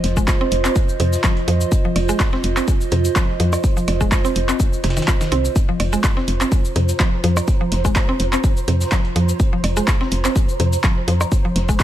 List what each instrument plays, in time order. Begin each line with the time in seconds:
Already playing: ambient pad F4 C5 D#5
0.04 fm bass F1, snare, closed hi-hat, open hi-hat
0.17 synth arpeggio sound G#3, kick, cabasa, percussion blips
0.28 kick, snare, clap, closed hi-hat, cabasa
0.41 synth arpeggio sound C4
0.52 fm bass F1, closed hi-hat, open hi-hat
0.65 synth arpeggio sound C4, clap, cabasa
0.76 kick, closed hi-hat, cabasa
0.89 cabasa
1.00 fm bass F2, synth arpeggio sound C3, closed hi-hat, open hi-hat
1.13 snare, cabasa
1.24 synth arpeggio sound F3, kick, snare, clap, closed hi-hat, cabasa, percussion blips
1.37 closed hi-hat
1.48 fm bass F2, synth arpeggio sound F3, closed hi-hat, open hi-hat
1.61 cabasa
1.72 kick, closed hi-hat, cabasa
1.85 synth arpeggio sound F3
1.96 fm bass F1, open hi-hat, percussion blips
2.09 synth arpeggio sound G#3, cabasa
2.20 kick, snare, clap, closed hi-hat, cabasa
2.33 synth arpeggio sound C4, snare
2.44 fm bass F1, closed hi-hat, open hi-hat
2.57 synth arpeggio sound C4, snare, clap, cabasa
2.68 kick, closed hi-hat, cabasa
2.81 cabasa
2.92 fm bass F2, synth arpeggio sound C3, closed hi-hat, open hi-hat
3.05 closed hi-hat, cabasa
3.16 synth arpeggio sound F3, kick, snare, clap, closed hi-hat, cabasa
3.40 fm bass F2, synth arpeggio sound F3, closed hi-hat, open hi-hat
3.53 percussion blips, cabasa
3.64 kick, closed hi-hat, cabasa
3.77 synth arpeggio sound F3, cabasa
3.88 fm bass F1, snare, closed hi-hat, open hi-hat, percussion blips
4.01 synth arpeggio sound G#3, kick, cabasa, percussion blips
4.12 kick, snare, clap, closed hi-hat, cabasa
4.25 synth arpeggio sound C4, cabasa
4.36 fm bass F1, closed hi-hat, open hi-hat
4.49 synth arpeggio sound C4, clap, cabasa
4.60 kick, closed hi-hat, cabasa
4.73 cabasa
4.84 fm bass F1, synth arpeggio sound C3, snare, closed hi-hat, open hi-hat
4.90 snare, closed hi-hat
4.97 synth arpeggio sound D#3, snare, closed hi-hat, cabasa
5.02 snare, closed hi-hat
5.08 synth arpeggio sound F4, kick, snare, clap, closed hi-hat, cabasa, percussion blips
5.21 synth arpeggio sound D#3, snare, closed hi-hat, cabasa
5.32 fm bass C2, synth arpeggio sound C4, closed hi-hat, open hi-hat
5.45 cabasa
5.56 synth texture C5, kick, closed hi-hat, cabasa
5.69 synth arpeggio sound F3
5.77 fm bass F1, ambient pad A#5, open hi-hat, percussion blips
5.93 synth arpeggio sound G#3, cabasa
6.04 kick, snare, clap, closed hi-hat, cabasa
6.17 synth arpeggio sound C4, snare
6.28 fm bass F1, closed hi-hat, open hi-hat
6.41 synth arpeggio sound C4, snare, clap, cabasa
6.52 kick, closed hi-hat, cabasa
6.65 cabasa
6.76 fm bass F2, synth arpeggio sound C3, closed hi-hat, open hi-hat
6.89 closed hi-hat, cabasa
7.00 synth arpeggio sound F3, kick, snare, clap, closed hi-hat, cabasa
7.24 fm bass F2, synth arpeggio sound F3, closed hi-hat, open hi-hat
7.37 percussion blips, cabasa
7.48 kick, closed hi-hat, cabasa
7.61 synth arpeggio sound F3
7.72 fm bass F1, snare, closed hi-hat, open hi-hat
7.85 synth arpeggio sound G#3, kick, cabasa, percussion blips
7.96 kick, snare, clap, closed hi-hat, cabasa
8.09 synth arpeggio sound C4
8.20 fm bass F1, closed hi-hat, open hi-hat
8.33 synth arpeggio sound C4, clap, cabasa
8.44 kick, closed hi-hat, cabasa
8.57 cabasa
8.68 fm bass F2, synth arpeggio sound C3, closed hi-hat, open hi-hat
8.81 snare, cabasa
8.92 synth arpeggio sound F3, kick, snare, clap, closed hi-hat, cabasa, percussion blips
9.05 closed hi-hat
9.16 fm bass F2, synth arpeggio sound F3, closed hi-hat, open hi-hat
9.29 cabasa
9.40 kick, closed hi-hat, cabasa
9.53 synth arpeggio sound F3
9.64 fm bass F1, open hi-hat, percussion blips
9.77 synth arpeggio sound G#3, cabasa
9.88 kick, snare, clap, closed hi-hat, cabasa
10.01 synth arpeggio sound C4, snare
10.12 fm bass F1, closed hi-hat, open hi-hat
10.25 synth arpeggio sound C4, snare, clap, cabasa
10.36 kick, closed hi-hat, cabasa
10.49 cabasa
10.60 fm bass F2, synth arpeggio sound C3, closed hi-hat, open hi-hat
10.73 closed hi-hat, cabasa
10.84 synth arpeggio sound F3, kick, snare, clap, closed hi-hat, cabasa
11.08 fm bass F2, synth arpeggio sound F3, closed hi-hat, open hi-hat
11.21 percussion blips, cabasa
11.32 kick, closed hi-hat, cabasa
11.45 synth arpeggio sound F3
11.56 fm bass F1, snare, closed hi-hat, open hi-hat
11.69 synth arpeggio sound G#3, kick, cabasa, percussion blips
11.80 kick, snare, clap, closed hi-hat, cabasa